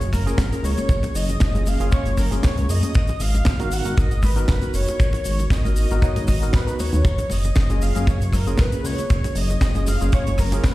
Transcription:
Already playing: C#5, sub drop
0.01 F#1, closed hi-hat, shaker
0.13 A#4, kick, cross-stick, open hi-hat, muted conga, high conga, cabasa, shaker
0.26 A#3 C#4 F4 G#4, closed hi-hat, cabasa, shaker
0.38 F#1 A#4, kick, snare, closed hi-hat, muted conga, cabasa, shaker
0.51 A#3 C#4 F4 G#4, closed hi-hat, shaker
0.63 C#2 C#5, open hi-hat, cabasa, shaker
0.77 closed hi-hat, muted conga, high conga, cabasa, shaker
0.89 F#1, kick, closed hi-hat, cabasa, shaker
1.03 closed hi-hat, muted conga, low conga, shaker
1.15 F#1 D#5, open hi-hat, cabasa, shaker
1.28 closed hi-hat, low conga, cabasa, shaker
1.40 F#1, kick, snare, closed hi-hat, muted conga, cabasa, shaker
1.54 A#3 C#4 F4 G#4, closed hi-hat, high conga, shaker
1.66 F5, open hi-hat, muted conga, cabasa, shaker
1.79 F#1 A#3 C#4 F4 G#4, closed hi-hat, cabasa, shaker
1.91 A#3 C#4 F4 C#5, kick, closed hi-hat, cabasa, shaker
2.06 F#1, closed hi-hat, muted conga, shaker
2.17 A#4, kick, cross-stick, open hi-hat, high conga, cabasa, shaker
2.30 A#3 C#4 F4 G#4, closed hi-hat, muted conga, cabasa, shaker
2.43 C#5, kick, snare, closed hi-hat, shaker
2.57 C#2, closed hi-hat, shaker
2.69 F#2 D#5, open hi-hat, muted conga, cabasa, shaker
2.83 closed hi-hat, high conga, cabasa, shaker
2.94 G#1, kick, closed hi-hat, muted conga, cabasa, shaker
3.07 closed hi-hat, low conga, shaker
3.20 G#1 F5, open hi-hat, cabasa, shaker
3.34 closed hi-hat, muted conga, low conga, cabasa, shaker
3.45 G#1, kick, snare, closed hi-hat, cabasa, shaker
3.59 B3 D#4 F#4 A#4, closed hi-hat, muted conga, high conga, shaker
3.71 F#5, open hi-hat, cabasa, shaker
3.84 G#1 B3 D#4 F#4 A#4, closed hi-hat, cabasa, shaker
3.97 G#1 D#5, kick, closed hi-hat, muted conga, cabasa, shaker
4.11 G#1, closed hi-hat, shaker
4.22 B4, kick, cross-stick, open hi-hat, muted conga, high conga, cabasa, shaker
4.36 B3 D#4 F#4 A#4, closed hi-hat, cabasa, shaker
4.48 G#1 B4, kick, snare, closed hi-hat, cabasa, shaker
4.61 B3 D#4 F#4 A#4, closed hi-hat, muted conga, shaker
4.74 F#1 C#5, open hi-hat, cabasa, shaker
4.88 closed hi-hat, muted conga, high conga, cabasa, shaker
5.00 G#1, kick, closed hi-hat, cabasa, shaker
5.13 closed hi-hat, low conga, shaker
5.24 G#1, open hi-hat, muted conga, cabasa, shaker
5.39 closed hi-hat, low conga, cabasa, shaker
5.50 G#1 D#5, kick, snare, closed hi-hat, muted conga, cabasa, shaker
5.64 B3 D#4 F#4 A#4, closed hi-hat, high conga, shaker
5.76 open hi-hat, cabasa, shaker
5.91 G#1 B3 D#4 F#4 A#4, closed hi-hat, muted conga, cabasa, shaker
6.02 B3 D#4 F#4 C#5 D#5, kick, closed hi-hat, cabasa, shaker
6.16 G#1, closed hi-hat, muted conga, shaker
6.27 kick, cross-stick, open hi-hat, high conga, cabasa, shaker
6.42 B3 D#4 F#4 A#4, closed hi-hat, cabasa, shaker
6.53 B4, kick, snare, closed hi-hat, muted conga, cabasa, shaker
6.67 B3 D#4 F#4 B4, closed hi-hat, shaker
6.79 D#2 C#5, open hi-hat, muted conga, cabasa, shaker
6.92 D#2, closed hi-hat, high conga, cabasa, shaker
7.05 F#1, kick, closed hi-hat, muted conga, cabasa, shaker
7.18 closed hi-hat, low conga, shaker
7.30 F#1 D#5, open hi-hat, muted conga, cabasa, shaker
7.44 closed hi-hat, low conga, cabasa, shaker
7.55 F#1, kick, snare, closed hi-hat, cabasa, shaker
7.70 A#3 C#4 F4 G#4, closed hi-hat, muted conga, high conga, shaker
7.81 F5, open hi-hat, cabasa, shaker
7.95 F#1 A#3 C#4 F4 G#4, closed hi-hat, muted conga, cabasa, shaker
8.07 F#1 C#5, kick, closed hi-hat, cabasa, shaker
8.21 F#1, closed hi-hat, shaker
8.33 A#4, kick, cross-stick, open hi-hat, muted conga, high conga, cabasa, shaker
8.46 A#3 C#4 F4 G#4, closed hi-hat, cabasa, shaker
8.58 F#1 B4, kick, snare, closed hi-hat, muted conga, cabasa, shaker
8.72 A#3 C#4 F4 G#4, closed hi-hat, shaker
8.84 C#2 C#5, open hi-hat, cabasa, shaker
8.98 closed hi-hat, muted conga, high conga, cabasa, shaker
9.10 F#1, kick, closed hi-hat, cabasa, shaker
9.24 closed hi-hat, muted conga, low conga, shaker
9.35 F#1 D#5, open hi-hat, cabasa, shaker
9.49 closed hi-hat, low conga, cabasa, shaker
9.61 F#1, kick, snare, closed hi-hat, muted conga, cabasa, shaker
9.75 A#3 C#4 F4 G#4, closed hi-hat, high conga, shaker
9.86 F5, open hi-hat, muted conga, cabasa, shaker
10.00 F#1 A#3 C#4 F4 G#4, closed hi-hat, cabasa, shaker
10.12 A#3 C#4 F4 C#5, kick, closed hi-hat, cabasa, shaker
10.27 F#1, closed hi-hat, muted conga, shaker
10.38 A#4, kick, cross-stick, open hi-hat, high conga, cabasa, shaker
10.51 A#3 C#4 F4 G#4, closed hi-hat, muted conga, cabasa, shaker
10.64 B4, kick, snare, closed hi-hat, cabasa, shaker

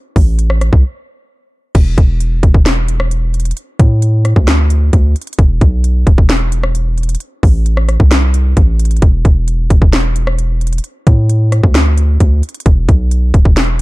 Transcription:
0.16 A1, kick, open hi-hat
0.39 closed hi-hat
0.50 cross-stick
0.61 cross-stick, closed hi-hat
0.73 C2, kick
1.75 E1, kick, closed hi-hat, crash
1.98 E1, kick, closed hi-hat
2.20 closed hi-hat
2.43 E1, kick, closed hi-hat
2.54 E1, kick
2.66 snare, clap, closed hi-hat
2.88 closed hi-hat
3.00 cross-stick
3.11 closed hi-hat
3.34 closed hi-hat
3.40 closed hi-hat
3.45 closed hi-hat
3.51 closed hi-hat
3.57 closed hi-hat
3.80 A2, kick, closed hi-hat
4.02 closed hi-hat
4.25 cross-stick, closed hi-hat
4.36 D2, kick
4.48 snare, clap, closed hi-hat
4.70 closed hi-hat
4.93 D2, kick, closed hi-hat
5.16 closed hi-hat
5.22 closed hi-hat
5.27 closed hi-hat
5.33 closed hi-hat
5.39 E1, kick, closed hi-hat
5.61 B1, kick, closed hi-hat
5.84 closed hi-hat
6.07 D1, kick, closed hi-hat
6.18 E1, kick
6.30 snare, clap, closed hi-hat
6.52 closed hi-hat
6.63 cross-stick
6.75 closed hi-hat
6.98 closed hi-hat
7.03 closed hi-hat
7.09 closed hi-hat
7.15 closed hi-hat
7.20 closed hi-hat
7.43 A1, kick, open hi-hat
7.66 closed hi-hat
7.77 cross-stick
7.89 cross-stick, closed hi-hat
8.00 C2, kick
8.11 snare, clap, closed hi-hat
8.34 closed hi-hat
8.57 A1, kick, closed hi-hat
8.79 closed hi-hat
8.85 closed hi-hat
8.91 closed hi-hat
8.97 closed hi-hat
9.02 E1, kick, closed hi-hat
9.25 E1, kick, closed hi-hat
9.48 closed hi-hat
9.70 E1, kick, closed hi-hat
9.82 E1, kick
9.93 snare, clap, closed hi-hat
10.16 closed hi-hat
10.27 cross-stick
10.39 closed hi-hat
10.61 closed hi-hat
10.67 closed hi-hat
10.73 closed hi-hat
10.78 closed hi-hat
10.84 closed hi-hat
11.07 A2, kick, closed hi-hat
11.30 closed hi-hat
11.52 cross-stick, closed hi-hat
11.63 D2, kick
11.75 snare, clap, closed hi-hat
11.98 closed hi-hat
12.20 D2, kick, closed hi-hat
12.43 closed hi-hat
12.49 closed hi-hat
12.54 closed hi-hat
12.60 closed hi-hat
12.66 E1, kick, closed hi-hat
12.89 B1, kick, closed hi-hat
13.11 closed hi-hat
13.34 D1, kick, closed hi-hat
13.45 E1, kick
13.57 snare, clap, closed hi-hat

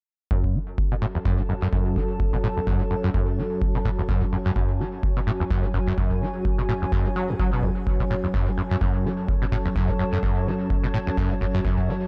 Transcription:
0.31 F#2 F#3 C#4 F#4 A4, kick
0.44 A5, kick
0.55 F#3
0.71 C#5
0.78 kick
0.92 B2
1.02 A2
1.15 E2
1.25 F#2, kick
1.39 G#2
1.49 F#2
1.62 F#2
1.73 F#2, kick
1.96 F#3, kick
2.20 kick
2.33 B2, kick
2.43 A2
2.57 E2
2.67 F#2, kick
2.80 G#2
2.91 F#2
3.04 F#2
3.14 F#2, kick
3.38 F#3
3.62 kick
3.75 B2
3.85 A2, kick
3.99 E2
4.09 F#2 F#4, kick
4.22 G#2 G#5, kick
4.32 F#2
4.46 F#2
4.56 F#2, kick
4.80 F#3
5.03 kick
5.17 B2
5.27 A2
5.40 E2
5.51 F#2, kick
5.64 G#2
5.74 F#2, kick
5.87 F#2
5.98 F#2, kick
6.11 kick
6.21 F#3
6.45 kick
6.58 B2
6.69 A2
6.82 E2
6.92 F#2, kick
7.06 G#2
7.16 F#3
7.29 F#2
7.40 F#3, kick
7.53 B2
7.63 E2, kick
7.87 A4, kick
8.00 B2 A5, kick
8.10 A2
8.24 E2
8.34 F#2, kick
8.47 G#2
8.58 F#2
8.71 F#2
8.81 F#2, kick
9.05 F#3
9.29 kick
9.42 B2
9.52 A2, kick
9.65 E2
9.76 F#2, kick
9.89 G#2, kick
9.99 F#2
10.13 F#2
10.23 F#2, kick
10.47 F#3
10.70 kick
10.84 B2
10.94 A2
11.07 E2
11.18 F#2, kick
11.31 G#2
11.41 F#2, kick
11.54 F#2
11.65 F#2 G#4, kick
11.78 kick
11.88 F#3

